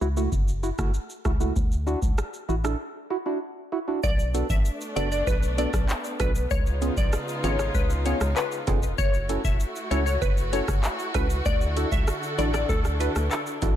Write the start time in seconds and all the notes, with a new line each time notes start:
0.01 C#2 E4 F#4, shaker
0.17 A3 E4 F#4, shaker
0.32 F#1, kick, shaker
0.48 shaker
0.63 E4 F#4, shaker
0.78 F#1 A3 E4 F#4, kick, cross-stick, shaker
0.94 shaker
1.10 shaker
1.25 C#2 E4 F#4, kick, cross-stick, shaker
1.40 A3 E4 F#4, shaker
1.56 D2, kick, shaker
1.72 shaker
1.87 D4 E4 F#4, shaker
2.02 C#2, kick, shaker
2.18 cross-stick, shaker
2.34 shaker
2.49 A1 E4 F#4, shaker
2.64 D4 E4 A4, cross-stick, shaker
3.10 E4 F#4
3.26 D4 E4 F#4
3.72 E4 F#4
3.88 D4 E4 F#4
4.03 B1 A3 B3 D4 D5, kick, shaker
4.19 shaker
4.34 B3 D4 F#4 A4, closed hi-hat, shaker
4.50 A1 E5, kick, shaker
4.65 shaker
4.81 shaker
4.96 F#1 B3 D4 F#4 A4 D5, closed hi-hat, shaker
5.12 D5, shaker
5.27 B1 B4, kick, shaker
5.43 shaker
5.58 B3 D4 F#4 A4 D5, closed hi-hat, shaker
5.73 B1, kick, cross-stick, shaker
5.89 clap, shaker
6.04 shaker
6.20 B1 B3 D4 F#4 A4 B4, kick, cross-stick, closed hi-hat, shaker
6.35 shaker
6.51 C#2 C#3 G#3 D#4 F4 C#5, kick, shaker
6.66 shaker
6.82 B3 C#4 F4 G#4, closed hi-hat, shaker
6.97 B1 D5, kick, shaker
7.13 cross-stick, shaker
7.28 shaker
7.43 G#1 B3 C#4 F4 G#4 C#5, closed hi-hat, high timbale, shaker
7.59 C#5, cross-stick, high timbale, shaker
7.74 C#2 B4, kick, shaker
7.90 shaker
8.05 B3 C#4 F4 G#4 C#5, closed hi-hat, shaker
8.21 C#2, cross-stick, shaker
8.36 B4, clap, shaker
8.52 shaker
8.67 F1 B3 C#4 F4 G#4, kick, closed hi-hat, high timbale, shaker
8.83 shaker
8.98 F#1 A3 E4 F#4 C#5, kick, shaker
9.14 shaker
9.29 C#4 E4 F#4 A4, closed hi-hat, shaker
9.44 E1 E5, kick, shaker
9.60 shaker
9.76 shaker
9.91 C#2 C#4 E4 F#4 A4 C#5, closed hi-hat, shaker
10.06 C#5, shaker
10.22 F#1 B4, kick, shaker
10.37 shaker
10.53 C#4 E4 F#4 A4 C#5, closed hi-hat, shaker
10.68 F#1, kick, cross-stick, shaker
10.83 clap, shaker
10.99 shaker
11.14 C#2 C#4 E4 F#4 A4 B4, kick, cross-stick, closed hi-hat, shaker
11.30 shaker
11.46 D2 D3 D4 A4 D5, kick, shaker
11.61 shaker
11.77 D4 E4 F#4 A4, closed hi-hat, shaker
11.92 C#2 E5, kick, shaker
12.07 cross-stick, shaker
12.23 shaker
12.38 A1 D4 E4 F#4 A4 D5, closed hi-hat, high timbale, shaker
12.54 D5, cross-stick, high timbale, shaker
12.69 D2 A4, kick, shaker
12.85 cross-stick, shaker
13.00 D4 E4 F#4 A4 B4, closed hi-hat, shaker
13.16 D2, cross-stick, shaker
13.31 A4, clap, shaker
13.47 shaker
13.62 A1 D4 E4 F#4 A4, kick, closed hi-hat, high timbale, shaker